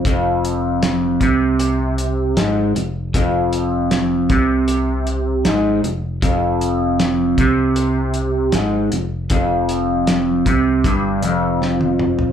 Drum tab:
HH |x-x-x-x-x-x-x-x-|x-x-x-x-x-x-x-x-|x-x-x-x-x-x-x-x-|x-x-x-x-x-x-----|
SD |----o-------o---|----o-------o---|----o-------o---|----o-------o---|
T1 |----------------|----------------|----------------|-------------o--|
T2 |----------------|----------------|----------------|--------------o-|
FT |----------------|----------------|----------------|---------------o|
BD |o-----o---------|o-----o---------|o-----o---------|o-----o-o-------|